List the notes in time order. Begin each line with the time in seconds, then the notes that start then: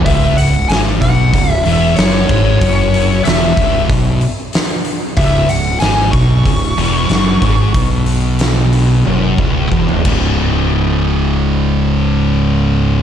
0.05 C#1 C#2 E5, kick, open hi-hat
0.37 C#1 C#2 F#5, open hi-hat
0.69 G#1 G#2 G#5, snare, open hi-hat
1.01 B1 B2 F#5, kick, open hi-hat
1.33 C#1 C#2, kick, open hi-hat
1.51 E5
1.65 E1 E2 E5, open hi-hat
1.96 F#1 F#2 C#5, snare, open hi-hat
2.29 G#1 G#2, kick, open hi-hat
2.59 F#1 F#2 C#5, kick, open hi-hat
2.94 open hi-hat
3.24 E1 E2 E5, snare, open hi-hat
3.57 C#1 C#2, kick, open hi-hat
3.89 B1 B2, kick, open hi-hat
4.21 open hi-hat
4.53 snare, open hi-hat
4.85 open hi-hat
5.17 C#1 C#2 E5, kick, open hi-hat
5.49 C#1 C#2 F#5, open hi-hat
5.80 G#1 G#2 G#5, snare, open hi-hat
6.11 B1 B2 C#6, kick, open hi-hat
6.46 C#1 C#2, kick, open hi-hat
6.77 E1 E2, open hi-hat
7.09 F#1 F#2, snare, open hi-hat
7.42 G#1 G#2, kick, open hi-hat
7.74 B1 B2, kick, open hi-hat
8.06 open hi-hat
8.39 snare, open hi-hat
8.73 open hi-hat
9.05 F#1 F#2, high tom
9.38 C#1 C#2, kick
9.71 E1 E2, kick
9.89 mid tom
10.05 C#1 C#2 G#2 C#3, kick, crash